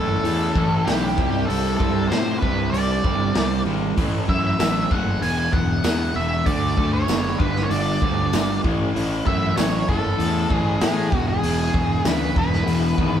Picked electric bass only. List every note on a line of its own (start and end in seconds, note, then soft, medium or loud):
0.00 0.19 F#1 medium
0.24 0.49 E2 medium
0.55 0.81 A1 medium
0.87 1.18 B1 medium
1.18 1.43 C2 medium
1.50 1.75 C2 medium
1.80 2.05 C2 medium
2.11 2.36 A2 medium
2.43 2.68 C2 medium
2.73 2.98 C2 medium
3.04 3.30 G1 medium
3.35 3.61 C2 medium
3.66 3.91 G#1 medium
3.97 4.23 A1 medium
4.29 4.54 F#2 medium
4.60 4.85 A1 medium
4.91 5.17 F#1 medium
5.22 5.48 E1 medium
5.53 5.79 E1 medium
5.84 6.10 E2 medium
6.15 6.41 E1 medium
6.47 6.72 D2 medium
6.78 7.03 D2 medium
7.09 7.34 F#1 medium
7.40 7.65 G1 medium
7.71 7.96 G1 medium
8.02 8.28 D2 medium
8.33 8.59 G1 medium
8.64 8.90 A1 medium
8.95 9.21 A1 medium
9.26 9.52 F#2 medium
9.57 9.83 A1 medium
9.89 10.14 F#1 medium
10.19 10.45 E2 medium
10.51 10.76 A1 medium
10.82 11.07 A2 medium
11.12 11.38 E1 medium
11.44 11.69 E1 medium
11.74 12.00 E1 medium
12.05 12.30 D2 medium
12.36 12.62 E1 medium
12.66 12.92 E1 medium
12.98 13.20 G#1 medium